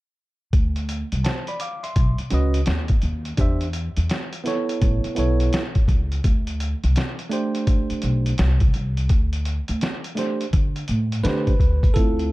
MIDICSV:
0, 0, Header, 1, 5, 480
1, 0, Start_track
1, 0, Tempo, 714286
1, 355, Time_signature, 4, 2, 24, 8
1, 8280, End_track
2, 0, Start_track
2, 0, Title_t, "Tine electric piano"
2, 0, Program_c, 0, 4
2, 835, Note_on_c, 0, 81, 52
2, 839, Note_on_c, 0, 72, 44
2, 982, Note_off_c, 0, 81, 0
2, 984, Note_off_c, 0, 72, 0
2, 996, Note_on_c, 0, 83, 62
2, 999, Note_on_c, 0, 74, 49
2, 1074, Note_off_c, 0, 83, 0
2, 1075, Note_off_c, 0, 74, 0
2, 1080, Note_on_c, 0, 86, 55
2, 1085, Note_on_c, 0, 77, 52
2, 1225, Note_off_c, 0, 86, 0
2, 1227, Note_off_c, 0, 77, 0
2, 1232, Note_on_c, 0, 84, 55
2, 1235, Note_on_c, 0, 76, 46
2, 1459, Note_off_c, 0, 84, 0
2, 1460, Note_off_c, 0, 76, 0
2, 1549, Note_on_c, 0, 61, 65
2, 1556, Note_on_c, 0, 66, 64
2, 1564, Note_on_c, 0, 71, 62
2, 1573, Note_on_c, 0, 75, 76
2, 1740, Note_off_c, 0, 61, 0
2, 1744, Note_off_c, 0, 66, 0
2, 1748, Note_off_c, 0, 71, 0
2, 1753, Note_off_c, 0, 75, 0
2, 2267, Note_on_c, 0, 62, 66
2, 2275, Note_on_c, 0, 67, 61
2, 2281, Note_on_c, 0, 72, 61
2, 2291, Note_on_c, 0, 76, 70
2, 2460, Note_off_c, 0, 62, 0
2, 2464, Note_off_c, 0, 67, 0
2, 2467, Note_off_c, 0, 72, 0
2, 2472, Note_off_c, 0, 76, 0
2, 2982, Note_on_c, 0, 59, 69
2, 2990, Note_on_c, 0, 64, 64
2, 2999, Note_on_c, 0, 69, 61
2, 3007, Note_on_c, 0, 73, 77
2, 3453, Note_off_c, 0, 59, 0
2, 3461, Note_on_c, 0, 59, 64
2, 3463, Note_off_c, 0, 64, 0
2, 3471, Note_off_c, 0, 69, 0
2, 3471, Note_on_c, 0, 64, 60
2, 3479, Note_on_c, 0, 69, 58
2, 3480, Note_off_c, 0, 73, 0
2, 3488, Note_on_c, 0, 73, 72
2, 3770, Note_off_c, 0, 59, 0
2, 3775, Note_off_c, 0, 64, 0
2, 3779, Note_off_c, 0, 69, 0
2, 3783, Note_off_c, 0, 73, 0
2, 4902, Note_on_c, 0, 57, 69
2, 4908, Note_on_c, 0, 62, 66
2, 4917, Note_on_c, 0, 67, 67
2, 4926, Note_on_c, 0, 72, 79
2, 5594, Note_off_c, 0, 57, 0
2, 5597, Note_off_c, 0, 62, 0
2, 5602, Note_off_c, 0, 67, 0
2, 5606, Note_off_c, 0, 72, 0
2, 6822, Note_on_c, 0, 57, 64
2, 6829, Note_on_c, 0, 62, 58
2, 6839, Note_on_c, 0, 67, 59
2, 6846, Note_on_c, 0, 72, 70
2, 7017, Note_off_c, 0, 57, 0
2, 7021, Note_off_c, 0, 62, 0
2, 7026, Note_off_c, 0, 67, 0
2, 7029, Note_off_c, 0, 72, 0
2, 7550, Note_on_c, 0, 57, 77
2, 7550, Note_on_c, 0, 71, 93
2, 7557, Note_on_c, 0, 62, 69
2, 7567, Note_on_c, 0, 67, 70
2, 7574, Note_on_c, 0, 72, 79
2, 7741, Note_off_c, 0, 57, 0
2, 7745, Note_off_c, 0, 62, 0
2, 7750, Note_off_c, 0, 67, 0
2, 7753, Note_off_c, 0, 72, 0
2, 8023, Note_on_c, 0, 69, 88
2, 8034, Note_on_c, 0, 65, 51
2, 8036, Note_on_c, 0, 60, 48
2, 8044, Note_on_c, 0, 64, 55
2, 8047, Note_off_c, 0, 71, 0
2, 8280, Note_off_c, 0, 60, 0
2, 8280, Note_off_c, 0, 64, 0
2, 8280, Note_off_c, 0, 65, 0
2, 8280, Note_off_c, 0, 69, 0
2, 8280, End_track
3, 0, Start_track
3, 0, Title_t, "Upright bass"
3, 0, Program_c, 1, 32
3, 357, Note_on_c, 1, 38, 86
3, 682, Note_off_c, 1, 38, 0
3, 756, Note_on_c, 1, 36, 71
3, 824, Note_off_c, 1, 36, 0
3, 1320, Note_on_c, 1, 35, 88
3, 1445, Note_off_c, 1, 35, 0
3, 1557, Note_on_c, 1, 37, 79
3, 1754, Note_off_c, 1, 37, 0
3, 1794, Note_on_c, 1, 39, 71
3, 1993, Note_off_c, 1, 39, 0
3, 2037, Note_on_c, 1, 39, 75
3, 2234, Note_off_c, 1, 39, 0
3, 2277, Note_on_c, 1, 40, 84
3, 2602, Note_off_c, 1, 40, 0
3, 2670, Note_on_c, 1, 40, 72
3, 2740, Note_off_c, 1, 40, 0
3, 3239, Note_on_c, 1, 33, 92
3, 3365, Note_off_c, 1, 33, 0
3, 3482, Note_on_c, 1, 35, 71
3, 3677, Note_off_c, 1, 35, 0
3, 3954, Note_on_c, 1, 37, 76
3, 4152, Note_off_c, 1, 37, 0
3, 4197, Note_on_c, 1, 38, 80
3, 4522, Note_off_c, 1, 38, 0
3, 4595, Note_on_c, 1, 36, 75
3, 4663, Note_off_c, 1, 36, 0
3, 5400, Note_on_c, 1, 35, 80
3, 5596, Note_off_c, 1, 35, 0
3, 5641, Note_on_c, 1, 36, 84
3, 5836, Note_off_c, 1, 36, 0
3, 5882, Note_on_c, 1, 36, 77
3, 6116, Note_off_c, 1, 36, 0
3, 6116, Note_on_c, 1, 38, 81
3, 6441, Note_off_c, 1, 38, 0
3, 6513, Note_on_c, 1, 38, 74
3, 6582, Note_off_c, 1, 38, 0
3, 7078, Note_on_c, 1, 50, 98
3, 7275, Note_off_c, 1, 50, 0
3, 7319, Note_on_c, 1, 45, 80
3, 7515, Note_off_c, 1, 45, 0
3, 7561, Note_on_c, 1, 50, 91
3, 7756, Note_off_c, 1, 50, 0
3, 7795, Note_on_c, 1, 38, 80
3, 7993, Note_off_c, 1, 38, 0
3, 8039, Note_on_c, 1, 38, 99
3, 8280, Note_off_c, 1, 38, 0
3, 8280, End_track
4, 0, Start_track
4, 0, Title_t, "Muted upright bass strokes"
4, 1476, Note_on_c, 9, 29, 40
4, 1543, Note_off_c, 9, 29, 0
4, 3396, Note_on_c, 9, 29, 43
4, 3463, Note_off_c, 9, 29, 0
4, 5312, Note_on_c, 9, 29, 44
4, 5379, Note_off_c, 9, 29, 0
4, 8280, End_track
5, 0, Start_track
5, 0, Title_t, "Drums"
5, 356, Note_on_c, 9, 36, 84
5, 357, Note_on_c, 9, 42, 62
5, 424, Note_off_c, 9, 36, 0
5, 424, Note_off_c, 9, 42, 0
5, 510, Note_on_c, 9, 42, 50
5, 577, Note_off_c, 9, 42, 0
5, 597, Note_on_c, 9, 42, 66
5, 664, Note_off_c, 9, 42, 0
5, 753, Note_on_c, 9, 42, 48
5, 820, Note_off_c, 9, 42, 0
5, 837, Note_on_c, 9, 42, 77
5, 847, Note_on_c, 9, 38, 97
5, 904, Note_off_c, 9, 42, 0
5, 915, Note_off_c, 9, 38, 0
5, 989, Note_on_c, 9, 42, 47
5, 1056, Note_off_c, 9, 42, 0
5, 1074, Note_on_c, 9, 42, 73
5, 1141, Note_off_c, 9, 42, 0
5, 1235, Note_on_c, 9, 42, 46
5, 1303, Note_off_c, 9, 42, 0
5, 1316, Note_on_c, 9, 42, 64
5, 1317, Note_on_c, 9, 36, 82
5, 1383, Note_off_c, 9, 42, 0
5, 1385, Note_off_c, 9, 36, 0
5, 1468, Note_on_c, 9, 42, 43
5, 1535, Note_off_c, 9, 42, 0
5, 1549, Note_on_c, 9, 42, 75
5, 1616, Note_off_c, 9, 42, 0
5, 1707, Note_on_c, 9, 42, 54
5, 1775, Note_off_c, 9, 42, 0
5, 1786, Note_on_c, 9, 42, 84
5, 1795, Note_on_c, 9, 38, 97
5, 1854, Note_off_c, 9, 42, 0
5, 1862, Note_off_c, 9, 38, 0
5, 1937, Note_on_c, 9, 42, 42
5, 1946, Note_on_c, 9, 36, 74
5, 2004, Note_off_c, 9, 42, 0
5, 2013, Note_off_c, 9, 36, 0
5, 2027, Note_on_c, 9, 42, 50
5, 2095, Note_off_c, 9, 42, 0
5, 2186, Note_on_c, 9, 42, 42
5, 2253, Note_off_c, 9, 42, 0
5, 2267, Note_on_c, 9, 42, 71
5, 2273, Note_on_c, 9, 36, 88
5, 2335, Note_off_c, 9, 42, 0
5, 2340, Note_off_c, 9, 36, 0
5, 2425, Note_on_c, 9, 42, 54
5, 2492, Note_off_c, 9, 42, 0
5, 2509, Note_on_c, 9, 42, 67
5, 2576, Note_off_c, 9, 42, 0
5, 2665, Note_on_c, 9, 42, 51
5, 2732, Note_off_c, 9, 42, 0
5, 2752, Note_on_c, 9, 42, 75
5, 2762, Note_on_c, 9, 38, 90
5, 2819, Note_off_c, 9, 42, 0
5, 2830, Note_off_c, 9, 38, 0
5, 2907, Note_on_c, 9, 42, 48
5, 2974, Note_off_c, 9, 42, 0
5, 2995, Note_on_c, 9, 42, 71
5, 3004, Note_on_c, 9, 38, 30
5, 3063, Note_off_c, 9, 42, 0
5, 3071, Note_off_c, 9, 38, 0
5, 3154, Note_on_c, 9, 42, 47
5, 3221, Note_off_c, 9, 42, 0
5, 3236, Note_on_c, 9, 42, 67
5, 3237, Note_on_c, 9, 36, 82
5, 3303, Note_off_c, 9, 42, 0
5, 3304, Note_off_c, 9, 36, 0
5, 3389, Note_on_c, 9, 42, 45
5, 3456, Note_off_c, 9, 42, 0
5, 3470, Note_on_c, 9, 42, 71
5, 3537, Note_off_c, 9, 42, 0
5, 3629, Note_on_c, 9, 42, 55
5, 3696, Note_off_c, 9, 42, 0
5, 3714, Note_on_c, 9, 42, 80
5, 3723, Note_on_c, 9, 38, 104
5, 3782, Note_off_c, 9, 42, 0
5, 3790, Note_off_c, 9, 38, 0
5, 3865, Note_on_c, 9, 42, 45
5, 3868, Note_on_c, 9, 36, 73
5, 3932, Note_off_c, 9, 42, 0
5, 3935, Note_off_c, 9, 36, 0
5, 3951, Note_on_c, 9, 36, 68
5, 3955, Note_on_c, 9, 42, 50
5, 4018, Note_off_c, 9, 36, 0
5, 4023, Note_off_c, 9, 42, 0
5, 4111, Note_on_c, 9, 42, 39
5, 4178, Note_off_c, 9, 42, 0
5, 4195, Note_on_c, 9, 36, 90
5, 4195, Note_on_c, 9, 42, 71
5, 4262, Note_off_c, 9, 36, 0
5, 4262, Note_off_c, 9, 42, 0
5, 4349, Note_on_c, 9, 42, 51
5, 4416, Note_off_c, 9, 42, 0
5, 4437, Note_on_c, 9, 42, 64
5, 4504, Note_off_c, 9, 42, 0
5, 4594, Note_on_c, 9, 42, 49
5, 4661, Note_off_c, 9, 42, 0
5, 4676, Note_on_c, 9, 42, 79
5, 4686, Note_on_c, 9, 38, 96
5, 4743, Note_off_c, 9, 42, 0
5, 4754, Note_off_c, 9, 38, 0
5, 4831, Note_on_c, 9, 42, 47
5, 4898, Note_off_c, 9, 42, 0
5, 4915, Note_on_c, 9, 42, 74
5, 4983, Note_off_c, 9, 42, 0
5, 5072, Note_on_c, 9, 42, 50
5, 5139, Note_off_c, 9, 42, 0
5, 5155, Note_on_c, 9, 42, 68
5, 5156, Note_on_c, 9, 36, 82
5, 5222, Note_off_c, 9, 42, 0
5, 5223, Note_off_c, 9, 36, 0
5, 5308, Note_on_c, 9, 42, 44
5, 5376, Note_off_c, 9, 42, 0
5, 5388, Note_on_c, 9, 42, 76
5, 5455, Note_off_c, 9, 42, 0
5, 5551, Note_on_c, 9, 42, 54
5, 5618, Note_off_c, 9, 42, 0
5, 5631, Note_on_c, 9, 42, 84
5, 5639, Note_on_c, 9, 38, 107
5, 5698, Note_off_c, 9, 42, 0
5, 5706, Note_off_c, 9, 38, 0
5, 5781, Note_on_c, 9, 42, 46
5, 5787, Note_on_c, 9, 36, 78
5, 5848, Note_off_c, 9, 42, 0
5, 5854, Note_off_c, 9, 36, 0
5, 5872, Note_on_c, 9, 42, 47
5, 5939, Note_off_c, 9, 42, 0
5, 6029, Note_on_c, 9, 42, 44
5, 6096, Note_off_c, 9, 42, 0
5, 6111, Note_on_c, 9, 42, 72
5, 6114, Note_on_c, 9, 36, 92
5, 6178, Note_off_c, 9, 42, 0
5, 6181, Note_off_c, 9, 36, 0
5, 6268, Note_on_c, 9, 42, 50
5, 6335, Note_off_c, 9, 42, 0
5, 6353, Note_on_c, 9, 42, 71
5, 6420, Note_off_c, 9, 42, 0
5, 6506, Note_on_c, 9, 42, 52
5, 6573, Note_off_c, 9, 42, 0
5, 6595, Note_on_c, 9, 42, 79
5, 6605, Note_on_c, 9, 38, 90
5, 6662, Note_off_c, 9, 42, 0
5, 6672, Note_off_c, 9, 38, 0
5, 6749, Note_on_c, 9, 42, 48
5, 6816, Note_off_c, 9, 42, 0
5, 6835, Note_on_c, 9, 42, 75
5, 6844, Note_on_c, 9, 38, 29
5, 6902, Note_off_c, 9, 42, 0
5, 6911, Note_off_c, 9, 38, 0
5, 6994, Note_on_c, 9, 42, 50
5, 7061, Note_off_c, 9, 42, 0
5, 7076, Note_on_c, 9, 42, 68
5, 7077, Note_on_c, 9, 36, 85
5, 7144, Note_off_c, 9, 36, 0
5, 7144, Note_off_c, 9, 42, 0
5, 7230, Note_on_c, 9, 42, 43
5, 7297, Note_off_c, 9, 42, 0
5, 7310, Note_on_c, 9, 42, 70
5, 7377, Note_off_c, 9, 42, 0
5, 7474, Note_on_c, 9, 42, 57
5, 7541, Note_off_c, 9, 42, 0
5, 7558, Note_on_c, 9, 42, 81
5, 7566, Note_on_c, 9, 38, 104
5, 7625, Note_off_c, 9, 42, 0
5, 7634, Note_off_c, 9, 38, 0
5, 7709, Note_on_c, 9, 42, 46
5, 7710, Note_on_c, 9, 36, 80
5, 7776, Note_off_c, 9, 42, 0
5, 7778, Note_off_c, 9, 36, 0
5, 7793, Note_on_c, 9, 36, 72
5, 7800, Note_on_c, 9, 42, 51
5, 7860, Note_off_c, 9, 36, 0
5, 7867, Note_off_c, 9, 42, 0
5, 7951, Note_on_c, 9, 36, 78
5, 7955, Note_on_c, 9, 42, 41
5, 8018, Note_off_c, 9, 36, 0
5, 8022, Note_off_c, 9, 42, 0
5, 8035, Note_on_c, 9, 42, 71
5, 8037, Note_on_c, 9, 36, 94
5, 8103, Note_off_c, 9, 42, 0
5, 8105, Note_off_c, 9, 36, 0
5, 8194, Note_on_c, 9, 42, 34
5, 8261, Note_off_c, 9, 42, 0
5, 8280, End_track
0, 0, End_of_file